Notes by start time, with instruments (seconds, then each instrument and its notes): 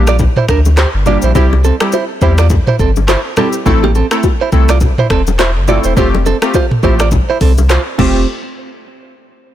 Already playing: sub bass A#1
0.07 clean electric guitar F4 D5, finger snap, cross-stick, shaker
0.19 kick, low conga, shaker
0.37 clean electric guitar E4 C5, mid tom
0.49 sub bass D2, clean electric guitar D4 A#4, finger snap, kick, cross-stick, shaker
0.65 low bongo, shaker
0.77 clean electric guitar G4 C5, finger snap, cross-stick, clap, high bongo, shaker
0.94 sub bass G1
1.06 synth keys G3 A#3 D4 G4, clean electric guitar F4 D5, high bongo, low conga, shaker
1.22 sub bass A#1, clean electric guitar E4 C5, shaker
1.35 sub bass C2, synth keys G3 C4 E4 G4, clean electric guitar E4 C5, kick, low conga, shaker
1.53 low bongo
1.64 clean electric guitar C4 A4, low bongo, shaker
1.80 synth keys G3 C4 E4 G4, finger snap, cross-stick, shaker
1.92 clean electric guitar E4 C5, high bongo, shaker
2.21 sub bass E2, synth keys G3 C4 E4 G4, clean electric guitar E4 C5, kick, shaker
2.38 clean electric guitar F4 D5, finger snap, cross-stick, shaker
2.50 kick, low conga, shaker
2.67 clean electric guitar E4 C5, mid tom
2.79 sub bass G1, clean electric guitar C4 A4, kick, shaker
2.96 low bongo, shaker
3.08 clean electric guitar E4 C5, finger snap, cross-stick, clap, high bongo, shaker
3.37 synth keys G3 C4 E4 G4, clean electric guitar C4 A4, finger snap, cross-stick, high bongo, low conga, shaker
3.53 shaker
3.66 sub bass A1, synth keys A3 C4 E4 A4, kick, low conga, shaker
3.84 clean electric guitar A#3 G4, low bongo
3.95 clean electric guitar C4 A4, low bongo, shaker
4.11 synth keys A3 C4 E4 A4, finger snap, cross-stick, shaker
4.23 kick, high bongo, shaker
4.41 clean electric guitar E4 C5
4.52 sub bass C2, synth keys A3 C4 E4 A4, kick, shaker
4.69 clean electric guitar F4 D5, finger snap, cross-stick, shaker
4.81 kick, low conga, shaker
4.98 clean electric guitar E4 C5, mid tom
5.10 sub bass E1, clean electric guitar C4 A4, finger snap, kick, cross-stick, shaker
5.27 low bongo, shaker
5.39 clean electric guitar E4 C5, finger snap, cross-stick, clap, high bongo, shaker
5.56 sub bass G1
5.68 synth keys A3 C4 E4 A4, clean electric guitar F4 D5, high bongo, low conga, shaker
5.84 sub bass E1, clean electric guitar E4 C5, shaker
5.96 sub bass F1, synth keys A3 C4 F4 G4, clean electric guitar F4 C5, kick, low conga, shaker
6.15 low bongo
6.26 clean electric guitar C4 A4, low bongo, shaker
6.42 synth keys A3 C4 F4 G4, finger snap, cross-stick, shaker
6.54 clean electric guitar F4 C5, kick, high bongo, shaker
6.71 mid tom
6.83 sub bass A1, synth keys A3 C4 F4 G4, clean electric guitar E4 C5, kick, shaker
6.99 clean electric guitar F4 D5, finger snap, cross-stick, shaker
7.11 kick, low conga, shaker
7.30 clean electric guitar E4 C5
7.41 sub bass C2, clean electric guitar C4 A4, kick, open hi-hat, shaker
7.58 low bongo, shaker
7.69 clean electric guitar F4 C5, finger snap, cross-stick, clap, high bongo, shaker
7.98 sub bass F1, synth keys A3 C4 F4 G4, clean electric guitar C4, kick, crash, low conga